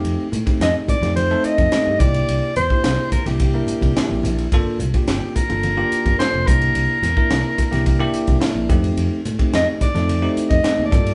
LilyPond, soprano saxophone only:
\new Staff \with { instrumentName = "Soprano saxophone" } { \time 4/4 \key f \mixolydian \tempo 4 = 108 r4 ees''8 d''8 c''8 ees''4 d''8~ | d''8 c''4 bes'16 g'4.~ g'16 r8 | r4 g'8 bes'4. c''8 bes'8~ | bes'2~ bes'8 r4. |
r4 ees''8 d''8~ \tuplet 3/2 { d''8. r16 ees''8~ ees''8 d''4 } | }